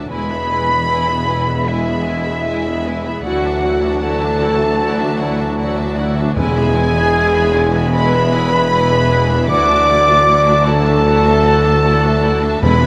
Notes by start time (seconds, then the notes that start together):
Already playing: F#3 E5 A5
0.10 E1 E2 E3 G#3 E4 B4 G#5 B5
0.29 B3 G#4 E5 B5
0.50 G#3 E4 B4 G#5
0.69 B3 G#4 E5 B5
0.88 G#3 E4 B4 G#5
1.07 B3 G#4 E5 B5
1.27 G#3 E4 B4 G#5
1.46 B3 G#4 E5 B5
1.66 G#3 E4 B4 E5 G#5
1.86 B3 G#4 E5 B5
2.05 G#3 E4 B4 G#5
2.24 B3 G#4 E5 B5
2.44 G#3 E4 B4 G#5
2.64 B3 G#4 E5 B5
2.84 G#3 E4 B4 G#5
3.04 B3 G#4 E5 B5
3.22 D2 F#3 E4 F#4 D5 F#5
3.43 D4 F#4 E5 A5
3.60 E4 D5 F#5
3.65 F#4
3.81 D4 F#4 E5 A5
4.00 E4 F#4 A4 D5 F#5 A5
4.19 D4 F#4 E5 A5
4.38 D5 F#5
4.42 E4 F#4
4.59 D4 F#4 E5 A5
4.77 E4 F#4 D5 F#5
4.99 D4 F#4 E5 A5
5.19 E4 F#4 D5 F#5
5.38 D4 F#4 E5 A5
5.58 E4 F#4 D5 F#5
5.77 D4 F#4 E5 A5
5.95 E4 F#4 D5 F#5
6.16 D4 F#4 E5 A5
6.35 E1 E2 E3 G#3 E4 G#4 B4 G#5
6.54 B3 G#4 E5 B5
6.74 G#3 E4 B4 G#5
6.95 B3 G#4 E5 B5
7.15 G#3 E4 B4 G#5
7.33 B3 G#4 E5 B5
7.53 G#3 E4 B4 G#5
7.73 B3 G#4 E5 B5
7.93 G#3 E4 B4 G#5 B5
8.13 B3 G#4 E5 B5
8.31 G#3 E4 B4 G#5
8.51 B3 G#4 E5 B5
8.71 G#3 E4 B4 G#5
8.91 B3 G#4 E5 B5
9.10 G#3 E4 B4 G#5
9.28 B3 G#4 E5 B5
9.48 D2 F#3 E4 F#4 D5 F#5 D6
9.67 D4 F#4 E5 A5
9.86 E4 F#4 D5 F#5
10.06 D4 F#4 E5 A5
10.25 E4 F#4 D5 F#5
10.45 D4 F#4 E5 A5
10.65 E4 F#4 A4 D5 F#5 A5
10.85 D4 F#4 E5 A5
11.05 E4 F#4 D5 F#5
11.23 D4 F#4 E5 A5
11.43 E4 F#4 D5 F#5
11.63 D4 F#4 E5 A5
11.82 E4 F#4 D5 F#5
12.01 D4 F#4 E5 A5
12.22 E4 F#4 D5 F#5
12.41 D4 F#4 E5 A5
12.61 E1 E2 E3 G#3 E4 B4 G#5 B5
12.81 B3 G#4 E5 B5